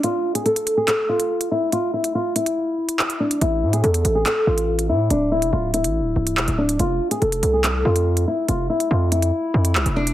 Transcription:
<<
  \new Staff \with { instrumentName = "Nylon-string guitar" } { \time 4/4 \key f \lydian \tempo 4 = 142 f'8. gis'16 a'8. gis'16 a'8 f'4 e'8 | f'8 e'8 f'8 e'2 d'8 | e'8. gis'16 a'8. gis'16 a'8 f'4 e'8 | d'8 e'8 f'8 e'2 d'8 |
f'8. gis'16 a'8. gis'16 r8 f'4 e'8 | f'8 e'8 f'8 e'2 d'8 | }
  \new Staff \with { instrumentName = "808-style bass" } { \clef bass \time 4/4 \key f \lydian r1 | r1 | a,,8 a,8 e,8 a,,8 r8 a,,4 a,8 | d,,8. f,,16 d,,8. a,,16. d,,16. c,,8 f,,16 d,,8. |
f,,8 r8 f,,8 c,4 f,4 r8 | f,,8 r8 f,4 r8 f,8 c,16 f,,8. | }
  \new DrumStaff \with { instrumentName = "Drums" } \drummode { \time 4/4 hh8. hh16 hh16 hh16 hh8 <hc hh>8. hh16 r16 hh8. | hh8. hh16 r8 hh16 hh16 r8. hh16 hc16 hh8 hh16 | hh8. hh16 hh16 hh16 hh8 <hc hh>8. hh16 r16 hh8. | hh8. hh16 r8 hh16 hh16 r8. hh16 hc16 hh8 hh16 |
hh8. hh16 hh16 hh16 hh8 <hc hh>8. hh16 r16 hh8. | hh8. hh16 r8 hh16 hh16 r8. hh16 hc16 hh8 hh16 | }
>>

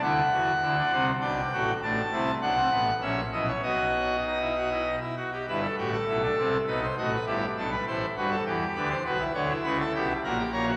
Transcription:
<<
  \new Staff \with { instrumentName = "Pipe organ" } { \time 3/4 \key e \minor \tempo 4 = 101 << { fis''2 g''4 | a''4 fis''4 e''8 dis''16 cis''16 | dis''2~ dis''8 r8 | b'16 a'16 g'16 a'4~ a'16 b'16 c''16 dis''16 b'16 |
g'8 a'16 b'16 c''8 b'16 a'16 g'8 b'16 c''16 | b'8 cis''8 b'16 a'16 g'8 ais'8 cis''8 | } \\ { e'8 fis'8 e'16 d'16 c'8 d'8 fis'8 | d'8 e'8 d'16 c'16 b8 cis'8 e'8 | fis'4 dis'16 e'16 fis'16 e'16 dis'16 e'16 fis'16 g'16 | e'8 fis'8 e'16 d'16 c'8 dis'8 fis'8 |
e'8 d'8 e'8 fis'8 r4 | fis'16 e'16 d'16 e'4~ e'16 fis'16 g'16 ais'16 fis'16 | } >> }
  \new Staff \with { instrumentName = "Pipe organ" } { \clef bass \time 3/4 \key e \minor <d, d>8 <e, e>8 <d, d>8 <c, c>8 <b,, b,>8 <a,, a,>8 | <a,, a,>8 <c, c>8 <b,, b,>8 <a,, a,>8 <ais,, ais,>8 <b,, b,>8 | <b,, b,>2~ <b,, b,>8 r8 | <g,, g,>8 <a,, a,>8 <b,, b,>8 <c, c>8 <b,, b,>8 <a,, a,>8 |
<g,, g,>8 <b,, b,>8 <a,, a,>8 <g,, g,>8 <e, e>8 <d, d>8 | <b,, b,>8 <d, d>8 <cis, cis>8 <b,, b,>8 <ais,, ais,>8 <ais,, ais,>8 | }
>>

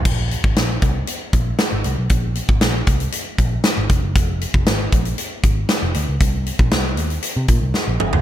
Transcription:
<<
  \new Staff \with { instrumentName = "Picked electric bass" } { \clef bass \time 4/4 \key aes \major \tempo 4 = 117 bes,,8. aes,,16 bes,,8 c,8 r8 bes,,8 r16 aes,,16 c,16 b,,16 | bes,,8. aes,,16 bes,,8 c,8 r8 bes,,8 r16 aes,,16 f,,16 ges,,16 | f,,8. f,,16 aes,,8 bes,,8 r8 aes,,8 r16 f,,16 d,16 des,16 | c,8. bes,,16 c,8 ees,8 r16 c16 bes,16 c,16 r16 bes,,16 g,,16 ges,,16 | }
  \new DrumStaff \with { instrumentName = "Drums" } \drummode { \time 4/4 <cymc bd>8 hh16 bd16 <hh sn>8 <hh bd>8 hh8 <hh bd>8 <hh sn>8 hh8 | <hh bd>8 hh16 bd16 <hh sn>8 <hh bd>16 hh16 hh8 <hh bd>8 <hh sn>8 <hh bd>8 | <hh bd>8 hh16 bd16 <hh sn>8 <hh bd>16 hh16 hh8 <hh bd>8 <hh sn>8 hh8 | <hh bd>8 hh16 bd16 <hh sn>8 hh16 hh16 hh8 <hh bd>8 sn8 toml16 tomfh16 | }
>>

